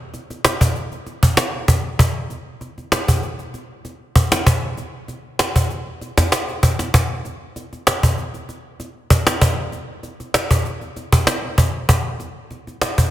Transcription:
0.14 cajon slap
0.30 cajon slap
0.45 cajon slap
0.61 cajon bass
0.76 cajon slap
0.92 cajon slap
1.06 cajon slap
1.23 cajon bass
1.37 cajon slap
1.68 cajon bass
1.99 cajon bass
2.30 cajon slap
2.61 cajon slap
2.78 cajon slap
2.92 cajon slap
3.08 cajon bass
3.23 cajon slap
3.39 cajon slap
3.54 cajon slap
3.85 cajon slap
4.16 cajon bass
4.32 cajon slap
4.47 cajon bass
4.77 cajon slap
5.08 cajon slap
5.39 cajon slap
5.56 cajon bass
5.70 cajon slap
6.01 cajon slap
6.18 cajon bass, cajon slap
6.32 cajon slap
6.48 cajon slap
6.63 cajon bass
6.79 cajon slap
6.94 cajon bass
7.25 cajon slap
7.56 cajon slap
7.73 cajon slap
7.87 cajon slap
8.03 cajon bass
8.18 cajon slap
8.34 cajon slap
8.49 cajon slap
8.80 cajon slap
9.10 cajon bass
9.27 cajon slap
9.41 cajon bass
9.72 cajon slap
10.03 cajon slap
10.20 cajon slap
10.34 cajon slap
10.51 cajon bass
10.65 cajon slap
10.81 cajon slap
10.96 cajon slap
11.12 cajon bass
11.27 cajon slap
11.58 cajon bass
11.89 cajon bass
12.20 cajon slap
12.51 cajon slap
12.67 cajon slap
12.82 cajon slap
12.98 cajon bass

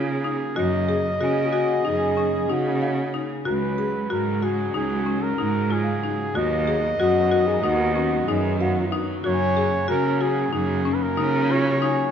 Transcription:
Already playing: C#3 F#3 A#3 F4 G#4
0.24 D#4
0.56 F#2 F#4 G#4 D#5
0.89 G#4
1.20 C#3 F#4 G#4
1.46 F4 G#5
1.53 F#4
1.85 F#2 D#4 G#4
2.17 C#4
2.49 C#3 D#4 F#4
2.82 F5
3.14 D#4
3.45 C#2 F#3 G#3 F#4 B4
3.78 G#4
4.10 G#2 F#4 A#4
4.42 F#4 G#4
4.74 C#2 D#4 G#4
5.06 C#4
5.24 A#4
5.37 G#2 D#4
5.70 F4 G#4
5.83 F5
6.03 D#4
6.34 D#2 D#3 F#3 B3 F#4 D#5
6.67 G#4
6.98 F#2 F#4
7.31 F#4
7.47 G#4
7.53 A#5
7.62 D#2 D#4 F#4
7.95 C#4 F#4
8.27 F#2 D#4 G#4
8.60 F#4 F5
8.92 D#4
9.24 F#2 C#3 A#3 F#4 C#5
9.34 G#5
9.57 G#4
9.88 C#3 F#4 A#4
10.21 F#4 G#4
10.53 F#2 D#4 G#4
10.66 F#4
10.85 C#4
10.94 B4
11.02 A#4
11.17 C#3 D#4
11.50 F4 C#5
11.82 D#4 G#5

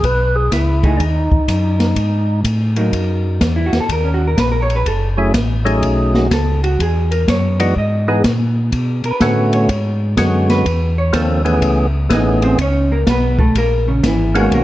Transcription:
0.03 B1 B4, kick, ride
0.36 G#4
0.51 C#2 E4, kick, snare, hi-hat pedal, ride
0.83 A3 D#4 G#4, kick, ride
0.97 D#2 D4 D#4, kick, ride
1.31 D#2, kick
1.48 F#2, kick, hi-hat pedal, ride
1.80 snare, ride
1.96 G#2, kick, ride
2.44 A2, kick, hi-hat pedal, ride
2.76 F#3 A#3 D#4, ride
2.93 F#2, kick, ride
3.41 E2, kick, snare, hi-hat pedal, ride
3.56 E4
3.66 F#4
3.72 E2, snare, ride
3.80 A4
3.89 D#2 A#4, kick, ride
4.04 C#4
4.14 F#4
4.27 A#4
4.37 A#1 B4, kick, snare, hi-hat pedal, ride
4.52 A#4
4.62 C#5
4.70 ride
4.76 B4
4.86 F#1 A4, kick, ride
5.17 F#3 A3 C#4 E4 G#4
5.34 A1, kick, snare, hi-hat pedal, ride
5.65 F#3 A3 C#4 D#4 G#4, ride
5.82 B1, kick, ride
6.14 F#4, snare
6.31 C#2 A4, kick, snare, hi-hat pedal, ride
6.64 F#4, ride
6.79 E2 G#4, kick, ride
7.11 A#4, ride
7.27 F#2 C#5, kick, snare, hi-hat pedal, ride
7.60 E3 G#3 B3 D#4 F#4 D5, ride
7.76 G#2 D#5, kick
8.08 E3 G#3 B3 D#4 G#4
8.24 A#2, kick, snare, hi-hat pedal, ride
8.72 B2, kick, ride
9.04 B2 B4, ride
9.20 A2 D3 A3 B3 C#4 F#4, kick, snare, hi-hat pedal, ride
9.53 C#5, ride
9.69 G#2, kick, ride
10.17 F#2 D3 G#3 B3 C#4 F#4, kick, snare, hi-hat pedal, ride
10.49 B4, snare, ride
10.65 E2, kick, ride
10.98 C#5
11.13 D#2 F3 A#3 C4 D4 A4, kick, snare, hi-hat pedal, ride
11.45 E3 A3 B3 C#4 G#4, ride
11.62 C#2, kick, ride
12.09 A1 E3 A3 B3 C#4 G#4 D#5, kick, snare, hi-hat pedal, ride
12.14 D#4
12.42 C4 C5, ride
12.58 C#2 C#4 C#5, kick, ride
12.92 A#3 A#4
13.06 B1 B3 B4, kick, snare, hi-hat pedal, ride
13.39 A3 A4, kick
13.55 A#1 A#3 A#4, kick, ride
13.88 C#3 C#4
14.03 G#1 E3 E4, kick, snare, hi-hat pedal, ride
14.35 D#3 G#3 A#3 B3 C#4 F#4 G#4, ride
14.52 B1 A#3 A#4, kick, ride

